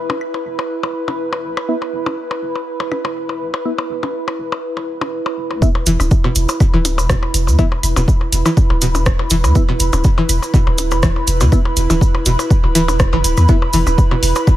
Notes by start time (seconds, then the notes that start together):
Already playing: E4 B4 B5
0.10 D1, percussion blips
0.21 claves
0.34 percussion blips
0.46 E1
0.59 percussion blips
0.83 D1, percussion blips
1.08 E1, percussion blips
1.33 percussion blips
1.44 B1
1.57 claves, percussion blips
1.69 B3 E4 E5
1.82 percussion blips
1.93 E1
2.06 D1, percussion blips
2.31 percussion blips
2.42 E1
2.55 percussion blips
2.80 D1, percussion blips
2.92 percussion blips, claves
3.05 E1, percussion blips
3.29 percussion blips
3.41 B1
3.54 percussion blips
3.65 B3 E4 E5
3.78 percussion blips
3.90 E1
4.03 D1, percussion blips
4.28 claves, percussion blips
4.39 E1
4.52 percussion blips
4.77 D1, percussion blips
5.01 E1, percussion blips
5.26 percussion blips
5.37 E1
5.51 E2, percussion blips
5.62 B3 E4 E5, kick, cabasa
5.75 percussion blips
5.86 E1 E3 B4, closed hi-hat, cabasa
6.00 D1, percussion blips, cabasa, claves
6.10 B5, kick, cabasa
6.24 B2, percussion blips
6.35 E1, closed hi-hat, cabasa
6.49 cabasa, percussion blips
6.60 kick, cabasa, claves
6.73 D1 E3, percussion blips
6.85 closed hi-hat, percussion blips, cabasa
6.98 E1, cabasa, percussion blips
7.10 B2, kick, cross-stick, cabasa
7.23 claves, percussion blips
7.34 E1, closed hi-hat, cabasa
7.47 E2, cabasa, percussion blips
7.59 E3 B3 E4 E5, kick, cabasa
7.72 percussion blips
7.83 E1, closed hi-hat, cabasa, claves
7.96 D1 B2, percussion blips, cabasa
8.08 kick, cabasa
8.21 percussion blips
8.32 E1, closed hi-hat, cabasa
8.46 E3, cabasa, claves, percussion blips
8.57 kick, cabasa
8.70 D1, percussion blips
8.81 B2, closed hi-hat, cabasa
8.95 E1, percussion blips, cabasa
9.06 kick, cross-stick, cabasa, claves
9.19 percussion blips
9.30 E1 E3, closed hi-hat, cabasa
9.44 E2, cabasa, percussion blips
9.55 B3 E4 E5, kick, cabasa
9.69 B2, claves, percussion blips
9.80 E1, closed hi-hat, cabasa
9.93 D1, percussion blips, cabasa
10.04 kick, cabasa
10.18 E3, percussion blips
10.29 E1, closed hi-hat, cabasa, claves
10.42 cabasa, percussion blips
10.54 B2, kick, cabasa
10.67 D1, percussion blips
10.78 closed hi-hat, percussion blips, cabasa
10.91 E1, cabasa, claves, percussion blips
11.03 E3, kick, cross-stick, cabasa
11.16 percussion blips
11.27 E1, closed hi-hat, cabasa
11.40 E2 B2, cabasa, percussion blips
11.52 B3 E4 E5, kick, cabasa, claves
11.65 percussion blips
11.77 E1, closed hi-hat, cabasa
11.90 D1 E3, percussion blips, cabasa
12.01 kick, cabasa
12.15 claves, percussion blips
12.26 E1 B2, closed hi-hat, cabasa
12.39 cabasa, percussion blips
12.51 kick, cabasa
12.64 D1, percussion blips
12.75 E3, closed hi-hat, cabasa, claves
12.88 E1, percussion blips, cabasa
12.99 kick, cross-stick, cabasa
13.13 F#1 E3, percussion blips
13.24 D1, closed hi-hat, cabasa
13.37 E2, cabasa, claves, percussion blips
13.48 B3 E4 E5, kick, cabasa
13.62 percussion blips
13.73 E1 E3, open hi-hat, cabasa
13.87 D1, percussion blips, cabasa, claves
13.98 kick, cabasa
14.11 B2, percussion blips
14.23 E1, open hi-hat, cabasa
14.35 cabasa, percussion blips
14.47 kick, cabasa, claves